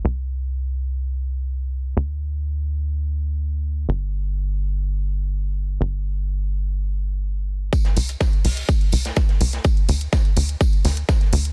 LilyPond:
<<
  \new Staff \with { instrumentName = "Analog synth bass" } { \clef bass \time 4/4 \key c \mixolydian \tempo 4 = 125 c,1 | d,1 | g,,1 | g,,1 |
r8 c,8 r8 c,8 r8 c,8 r8 c,8 | r8 d,8 r8 d,8 r8 d,8 r8 d,8 | }
  \new DrumStaff \with { instrumentName = "Drums" } \drummode { \time 4/4 r4 r4 r4 r4 | r4 r4 r4 r4 | r4 r4 r4 r4 | r4 r4 r4 r4 |
<hh bd tamb>16 <hh sn>16 <hho tamb>16 hh16 <hh bd sn tamb>16 hh16 hho16 hh16 <hh bd tamb>16 hh16 <hho tamb>16 <hh sn>16 <hh bd sn tamb>16 <hh sn>16 <hho tamb>16 <hh sn>16 | <hh bd tamb>16 hh16 <hho tamb>16 hh16 <hh bd sn tamb>16 hh16 <hho tamb>16 hh16 <hh bd tamb>16 hh16 <hho sn tamb>16 hh16 <hh bd sn tamb>16 <hh sn>16 <hho tamb>16 hh16 | }
>>